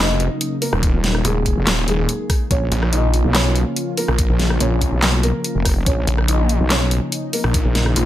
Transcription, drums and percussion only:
0.20 closed hi-hat medium
0.41 closed hi-hat medium
0.62 open hi-hat medium
0.73 cross-stick medium
0.83 kick loud
0.83 closed hi-hat medium
1.04 snare medium
1.04 closed hi-hat medium
1.15 cross-stick medium
1.25 closed hi-hat medium
1.46 kick medium
1.46 closed hi-hat medium
1.67 snare loud
1.67 clap medium
1.67 closed hi-hat medium
1.88 closed hi-hat medium
2.09 closed hi-hat medium
2.30 kick loud
2.30 cross-stick soft
2.30 open hi-hat medium
2.51 kick loud
2.51 closed hi-hat medium
2.72 closed hi-hat soft
2.83 cross-stick medium
2.93 closed hi-hat medium
3.14 closed hi-hat soft
3.35 snare loud
3.35 clap medium
3.35 closed hi-hat medium
3.56 closed hi-hat soft
3.77 closed hi-hat medium
3.97 open hi-hat medium
4.08 cross-stick medium
4.19 kick loud
4.19 closed hi-hat medium
4.40 snare medium
4.40 closed hi-hat medium
4.50 cross-stick medium
4.61 closed hi-hat medium
4.81 kick medium
4.81 closed hi-hat medium
5.02 snare loud
5.02 clap medium
5.02 closed hi-hat medium
5.23 closed hi-hat medium
5.44 closed hi-hat medium
5.65 kick loud
5.65 cross-stick medium
5.65 open hi-hat medium
5.86 kick loud
5.86 closed hi-hat medium
6.07 closed hi-hat medium
6.18 cross-stick medium
6.28 closed hi-hat medium
6.49 closed hi-hat medium
6.70 snare loud
6.70 clap medium
6.70 closed hi-hat medium
6.91 closed hi-hat medium
7.12 closed hi-hat medium
7.33 open hi-hat medium
7.44 cross-stick medium
7.54 kick loud
7.54 closed hi-hat medium
7.75 snare medium
7.75 closed hi-hat medium
7.86 cross-stick medium
7.96 closed hi-hat medium

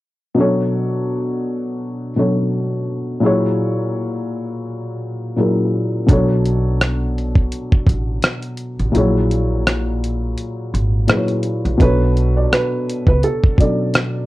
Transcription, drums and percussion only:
6.09 kick medium
6.09 closed hi-hat medium
6.45 closed hi-hat medium
6.81 cross-stick medium
6.81 closed hi-hat medium
7.18 closed hi-hat medium
7.35 kick medium
7.52 closed hi-hat medium
7.72 kick medium
7.87 kick medium
7.87 closed hi-hat medium
8.22 cross-stick loud
8.22 closed hi-hat medium
8.42 closed hi-hat soft
8.57 closed hi-hat medium
8.79 closed hi-hat soft
8.95 closed hi-hat medium
9.31 closed hi-hat medium
9.67 cross-stick loud
9.67 closed hi-hat medium
10.04 closed hi-hat medium
10.38 closed hi-hat medium
10.75 closed hi-hat medium
11.08 cross-stick loud
11.08 closed hi-hat medium
11.28 closed hi-hat soft
11.43 closed hi-hat medium
11.65 closed hi-hat soft
11.80 kick loud
11.80 closed hi-hat medium
12.17 closed hi-hat medium
12.53 cross-stick medium
12.53 closed hi-hat medium
12.90 closed hi-hat medium
13.07 kick medium
13.23 closed hi-hat medium
13.44 kick medium
13.58 kick medium
13.58 closed hi-hat medium
13.94 cross-stick loud
13.94 closed hi-hat medium

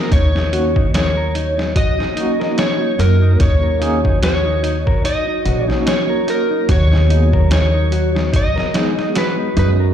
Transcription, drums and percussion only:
0.12 kick loud
0.12 closed hi-hat medium
0.36 snare soft
0.53 closed hi-hat medium
0.76 kick loud
0.94 snare loud
0.94 closed hi-hat medium
1.35 closed hi-hat medium
1.59 snare medium
1.76 kick loud
1.76 closed hi-hat medium
2.00 snare soft
2.17 closed hi-hat medium
2.41 snare soft
2.58 snare loud
2.58 closed hi-hat medium
3.00 closed hi-hat medium
3.40 kick loud
3.40 closed hi-hat medium
3.82 closed hi-hat medium
4.05 kick medium
4.23 snare loud
4.23 closed hi-hat medium
4.64 closed hi-hat medium
4.87 kick medium
5.05 closed hi-hat medium
5.46 closed hi-hat medium
5.70 snare soft
5.87 snare loud
5.87 closed hi-hat medium
6.28 closed hi-hat medium
6.69 kick loud
6.69 closed hi-hat medium
6.93 snare soft
7.10 closed hi-hat medium
7.33 kick medium
7.51 snare loud
7.51 closed hi-hat medium
7.92 closed hi-hat medium
8.16 snare medium
8.33 kick loud
8.33 closed hi-hat medium
8.58 snare soft
8.74 snare loud
8.74 closed hi-hat medium
8.99 snare soft
9.15 snare loud
9.15 closed hi-hat medium
9.57 closed hi-hat medium

